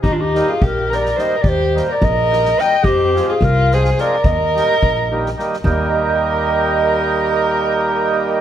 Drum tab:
SD |--o---ooo-|--o---ooo-|--o---ooo-|--o----ooo|
BD |o---o-----|o---o-----|o---o-----|o---o-----|

SD |----------|----------|
BD |o---------|----------|